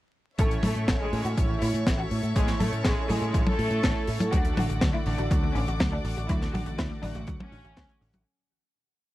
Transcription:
0.39 picked electric bass A1, analog polysynth A2 A3 C#4 E4 C#5, violin section A3 A4, string section A4 C#5 E5 C#6, kick, closed hi-hat
0.51 closed hi-hat
0.63 picked electric bass A2, violin section A3 A4, open hi-hat, high tom
0.75 picked electric bass A2, closed hi-hat
0.88 picked electric bass A1, kick, snare, closed hi-hat
1.01 violin section G#3 G#4
1.13 analog polysynth A2 A3 C#4 E4 C#5, picked electric bass A2, open hi-hat
1.25 picked electric bass A2, violin section F#4, closed hi-hat
1.37 picked electric bass A1, kick, closed hi-hat
1.62 picked electric bass A2, violin section E4, open hi-hat
1.74 picked electric bass A2, closed hi-hat
1.87 picked electric bass A1, kick, snare, closed hi-hat
1.99 violin section F#4
2.11 picked electric bass A2, open hi-hat
2.23 picked electric bass A2, closed hi-hat
2.36 picked electric bass A1, analog polysynth A2 A3 C#4 E4 C#5, violin section G#3 G#4, kick, closed hi-hat
2.47 snare, closed hi-hat
2.60 picked electric bass A2, violin section A3 A4, open hi-hat, high tom
2.73 picked electric bass A2, closed hi-hat
2.84 picked electric bass A1, violin section G#3 G#4, kick, snare, closed hi-hat
3.09 analog polysynth A2 A3 C#4 E4 C#5, picked electric bass A2, violin section G#3 G#4, open hi-hat, high tom
3.22 picked electric bass A2, closed hi-hat
3.34 picked electric bass A1, kick, closed hi-hat
3.47 violin section A3 A4, high tom
3.59 picked electric bass A2, open hi-hat
3.71 picked electric bass A2, closed hi-hat
3.83 picked electric bass A1, kick, snare, closed hi-hat
4.07 picked electric bass A2, open hi-hat
4.20 picked electric bass A2, closed hi-hat, high tom
4.32 picked electric bass D2, analog polysynth D3 A3 D4 F#4 D5, synth arpeggio sound F#3, violin section F#4, string section F#5 D6, kick, closed hi-hat
4.45 synth arpeggio sound A3, closed hi-hat
4.57 picked electric bass A1, synth arpeggio sound D4, violin section F#4, open hi-hat, high tom
4.69 picked electric bass A1, synth arpeggio sound F#4, closed hi-hat
4.81 picked electric bass D2, synth arpeggio sound F#3, kick, snare, closed hi-hat
4.94 synth arpeggio sound A3, violin section E4
5.06 picked electric bass A1, analog polysynth D3 A3 D4 F#4 D5, synth arpeggio sound D4, open hi-hat
5.18 picked electric bass A1, violin section D4, synth arpeggio sound F#4, closed hi-hat
5.31 picked electric bass D2, synth arpeggio sound F#3, kick, closed hi-hat
5.43 synth arpeggio sound A3
5.55 picked electric bass A1, violin section C#4, synth arpeggio sound D4, open hi-hat
5.68 picked electric bass A1, synth arpeggio sound F#4, closed hi-hat
5.80 picked electric bass D2, synth arpeggio sound F#3, kick, snare, closed hi-hat
5.92 synth arpeggio sound A3, violin section D4
6.04 picked electric bass A1, synth arpeggio sound D4, open hi-hat
6.17 picked electric bass A1, synth arpeggio sound F#4, closed hi-hat
6.29 picked electric bass D2, analog polysynth D3 A3 D4 F#4 D5, synth arpeggio sound F#3, violin section E4, kick, closed hi-hat
6.41 synth arpeggio sound A3, snare, closed hi-hat
6.54 picked electric bass A1, synth arpeggio sound D4, violin section F#4, open hi-hat, high tom
6.66 picked electric bass A1, synth arpeggio sound F#4, closed hi-hat
6.78 picked electric bass D2, synth arpeggio sound F#3, violin section E4, kick, snare, closed hi-hat
6.91 synth arpeggio sound A3
7.03 picked electric bass A1, analog polysynth D3 A3 F#4 F#5, synth arpeggio sound D4, violin section D4, open hi-hat, high tom
7.15 picked electric bass A1, synth arpeggio sound F#4, closed hi-hat
7.27 picked electric bass D2, synth arpeggio sound F#3, kick, closed hi-hat
7.40 synth arpeggio sound A3, violin section C#4, high tom
7.52 picked electric bass A1, synth arpeggio sound D4, open hi-hat
7.64 picked electric bass A1, synth arpeggio sound F#4, closed hi-hat
7.77 picked electric bass D2, synth arpeggio sound F#3, kick, snare, closed hi-hat
7.89 synth arpeggio sound A3, closed hi-hat
8.01 picked electric bass A1, synth arpeggio sound D4, open hi-hat
8.13 synth arpeggio sound F#4, closed hi-hat, high tom

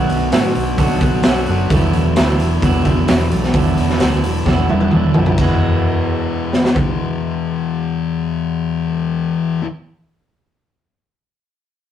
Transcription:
Already playing: distorted electric guitar B2 F#3, clean electric guitar B2 F#3 A3 D4 F#4
0.09 fingered electric bass B1, distorted electric guitar F#3 B3, open hi-hat
0.31 fingered electric bass A2, distorted electric guitar B2 F#3 B3, clean electric guitar F#3 A3 D4 F#4, snare, open hi-hat
0.55 fingered electric bass B1, open hi-hat
0.77 fingered electric bass B1, clean electric guitar B2 F#3 A3 D4 F#4, kick, open hi-hat
1.01 fingered electric bass B1, distorted electric guitar B3, clean electric guitar D4 F#4, kick, open hi-hat
1.05 distorted electric guitar F#3, clean electric guitar A3
1.23 fingered electric bass B1, distorted electric guitar B2 F#3 B3, clean electric guitar F#3 A3, snare, open hi-hat
1.27 clean electric guitar D4 F#4
1.46 fingered electric bass F#1, distorted electric guitar B3, clean electric guitar D4 F#4, open hi-hat
1.51 distorted electric guitar F#3, clean electric guitar A3
1.70 fingered electric bass E1, distorted electric guitar E2 B2 E3, clean electric guitar E2 B2 F#3 A3 D4 E4, kick, open hi-hat
1.93 fingered electric bass E1, distorted electric guitar E3, open hi-hat
1.97 distorted electric guitar B2
2.15 fingered electric bass D2, distorted electric guitar E2 B2, clean electric guitar F#3 A3 D4 E4, snare, open hi-hat
2.20 distorted electric guitar E3
2.40 fingered electric bass E1, open hi-hat
2.62 fingered electric bass E1, clean electric guitar E2 B2 F#3 A3 D4 E4, kick, open hi-hat
2.84 fingered electric bass E1, distorted electric guitar B2 E3, clean electric guitar A3 D4 E4, kick, open hi-hat
2.88 clean electric guitar F#3
3.07 fingered electric bass E1, distorted electric guitar E2 B2, clean electric guitar F#3 A3 D4 E4, snare, open hi-hat
3.12 distorted electric guitar E3
3.30 fingered electric bass B1, distorted electric guitar E3, clean electric guitar F#3 A3 D4 E4, open hi-hat
3.35 distorted electric guitar B2
3.44 snare
3.53 fingered electric bass E1, clean electric guitar E2 B2 F#3 A3 D4 E4, distorted electric guitar E2 B2, kick, open hi-hat
3.58 distorted electric guitar E3
3.77 fingered electric bass E1, distorted electric guitar B2 E3, open hi-hat
3.89 snare
3.99 fingered electric bass D2, distorted electric guitar E2 B2 E3, clean electric guitar F#3 A3 D4 E4, snare, open hi-hat
4.24 fingered electric bass E1, open hi-hat
4.45 fingered electric bass E1, clean electric guitar E2 B2 F#3 A3 D4 E4, kick, snare
4.69 fingered electric bass E1, distorted electric guitar E3, clean electric guitar F#3 A3 D4 E4, high tom
4.73 distorted electric guitar B2
4.81 high tom
4.91 fingered electric bass E1, distorted electric guitar E2 B2 E3, clean electric guitar F#3 A3 D4, mid tom
4.96 clean electric guitar E4
5.14 fingered electric bass B1, distorted electric guitar E3, clean electric guitar F#3 A3 D4 E4, floor tom
5.19 distorted electric guitar B2
5.26 floor tom
5.37 fingered electric bass E1, clean electric guitar E2 B2 E3 G#3 B3, distorted electric guitar E2 B2, kick, crash
5.42 distorted electric guitar E3, clean electric guitar E4
6.53 snare
6.65 snare
6.76 kick

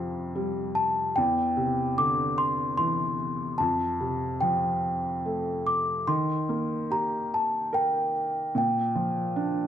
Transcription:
Already playing: felt piano F2 C3 F3, celesta G5
0.35 felt piano G3
0.75 celesta A5
1.16 felt piano E2, celesta G5
1.57 felt piano C3
1.98 felt piano D3, celesta D6
2.38 celesta C6
2.77 felt piano E3, celesta C6
3.58 felt piano F2, celesta A5
4.00 felt piano C3
4.41 felt piano F3, celesta G5
5.25 felt piano A3
5.67 celesta D6
6.07 felt piano D#3, celesta C6
6.49 felt piano A#3
6.90 felt piano G4, celesta A#5
7.34 celesta A5
7.73 felt piano A#4, celesta G5
8.55 felt piano A#2, celesta G5
8.95 felt piano F3
9.36 felt piano D4

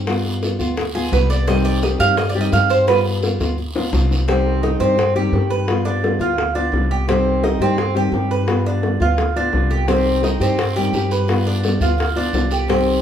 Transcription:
Already playing: upright bass G2
0.07 nylon-string guitar G3 B3 F4, high bongo, long guiro
0.25 high bongo
0.42 nylon-string guitar G3 B3 F4, high bongo, short guiro
0.59 upright bass D2, nylon-string guitar B3 F4, high bongo, short guiro
0.77 muted nylon-string guitar stroke, high bongo, long guiro
0.95 nylon-string guitar B3 F4, cuban tres G#4
1.11 upright bass C2, nylon-string guitar G3 B3 F4, cuban tres B4, high bongo, low bongo, short guiro
1.30 cuban tres D5, high bongo, short guiro
1.48 nylon-string guitar C3 D#3 G3 C4 G4, cuban tres D#5, high bongo, long guiro
1.65 cuban tres D5, high bongo
1.82 nylon-string guitar D#3 G3 C4 G4, cuban tres D#5, high bongo, short guiro
1.99 upright bass G2, nylon-string guitar D#3 G3 C4 G4, cuban tres F5, high bongo, short guiro
2.17 cuban tres D#5, muted nylon-string guitar stroke, high bongo, long guiro
2.29 cuban tres D5
2.35 nylon-string guitar D#3 G3 C4 G4
2.41 cuban tres D#5
2.52 upright bass G2, nylon-string guitar D#3 G3 C4 G4, cuban tres F5, high bongo, low bongo, short guiro
2.70 cuban tres C5, high bongo, short guiro
2.87 nylon-string guitar G3 B3 F4, cuban tres B4, high bongo, long guiro
3.05 high bongo
3.22 nylon-string guitar G3 B3 F4, high bongo, short guiro
3.39 upright bass D2, nylon-string guitar B3 F4, high bongo, short guiro
3.58 muted nylon-string guitar stroke, long guiro
3.76 nylon-string guitar B3 F4, low bongo
3.92 upright bass C2, nylon-string guitar G3 B3 F4, low bongo, short guiro
4.11 low bongo, short guiro
4.27 nylon-string guitar C3 D#3 G3 C4 G4, cuban tres C4, high bongo
4.47 high bongo
4.62 nylon-string guitar D#3 G3 C4 G4, cuban tres D#4, high bongo
4.80 upright bass G2, nylon-string guitar D#3 G3 C4 G4, cuban tres C4, high bongo
4.98 muted nylon-string guitar stroke, high bongo
5.16 nylon-string guitar D#3 G3 C4 G4, cuban tres G4
5.32 upright bass G2, nylon-string guitar D#3 G3 C4 G4, high bongo, low bongo
5.50 cuban tres B4, high bongo
5.68 nylon-string guitar G3 B3 F4, high bongo
5.85 cuban tres D4, high bongo
6.03 nylon-string guitar G3 B3 F4, high bongo
6.19 upright bass D2, nylon-string guitar B3 F4, cuban tres F4, high bongo
6.38 muted nylon-string guitar stroke, high bongo
6.55 nylon-string guitar B3 F4, cuban tres D4
6.72 upright bass C2, nylon-string guitar G3 B3 F4, high bongo, low bongo
6.91 cuban tres G4, high bongo
7.07 nylon-string guitar C3 D#3 G3 C4 G4, cuban tres C4, high bongo
7.27 high bongo
7.43 nylon-string guitar D#3 G3 C4 G4, cuban tres D#4, high bongo
7.59 upright bass G2, nylon-string guitar D#3 G3 C4 G4, cuban tres C4, high bongo
7.78 muted nylon-string guitar stroke, high bongo
7.95 nylon-string guitar D#3 G3 C4 G4, cuban tres G4
8.12 upright bass G2, nylon-string guitar D#3 G3 C4 G4, high bongo, low bongo
8.31 cuban tres B4, high bongo
8.47 nylon-string guitar G3 B3 F4, high bongo
8.66 cuban tres D4, high bongo
8.82 nylon-string guitar G3 B3 F4, high bongo
9.00 upright bass D2, nylon-string guitar B3 F4, cuban tres F4, high bongo
9.18 muted nylon-string guitar stroke, high bongo
9.36 nylon-string guitar B3 F4, cuban tres D4
9.53 upright bass C2, nylon-string guitar G3 B3 F4, high bongo, low bongo
9.71 cuban tres G4, high bongo
9.87 nylon-string guitar C3 D#3 G3 C4 G4, cuban tres C4, high bongo, long guiro
10.06 high bongo
10.22 nylon-string guitar D#3 G3 C4 G4, cuban tres D#4, high bongo, short guiro
10.40 upright bass G2, nylon-string guitar D#3 G3 C4 G4, cuban tres C4, high bongo, short guiro
10.58 muted nylon-string guitar stroke, high bongo, long guiro
10.76 nylon-string guitar D#3 G3 C4 G4, cuban tres G4
10.93 upright bass G2, nylon-string guitar D#3 G3 C4 G4, high bongo, low bongo, short guiro
11.11 cuban tres B4, high bongo, short guiro
11.28 nylon-string guitar G3 B3 F4, high bongo, long guiro
11.47 cuban tres D4, high bongo
11.63 nylon-string guitar G3 B3 F4, high bongo, short guiro
11.80 upright bass D2, nylon-string guitar B3 F4, cuban tres F4, high bongo, short guiro
11.98 muted nylon-string guitar stroke, high bongo, long guiro
12.16 nylon-string guitar B3 F4, cuban tres D4
12.33 upright bass C2, nylon-string guitar G3 B3 F4, high bongo, low bongo, short guiro
12.51 cuban tres G4, high bongo, short guiro
12.68 nylon-string guitar C3 D#3 G3 C4 G4, cuban tres C4, high bongo, long guiro
12.87 high bongo

